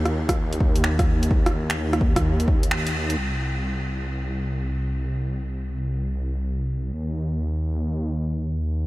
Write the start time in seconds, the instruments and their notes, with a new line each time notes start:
Already playing: detuned saw bass D#2
0.06 cross-stick, closed hi-hat
0.29 kick, cross-stick, closed hi-hat
0.53 closed hi-hat
0.60 kick
0.76 closed hi-hat
0.84 finger snap
0.99 kick, cross-stick, closed hi-hat
1.23 closed hi-hat
1.31 kick
1.46 cross-stick, closed hi-hat
1.70 finger snap, closed hi-hat
1.93 cross-stick, closed hi-hat
2.01 kick
2.16 kick, cross-stick, closed hi-hat
2.40 closed hi-hat
2.48 kick
2.63 closed hi-hat
2.71 finger snap
2.87 closed hi-hat
3.10 closed hi-hat
3.18 detuned saw bass C2
6.93 detuned saw bass D#2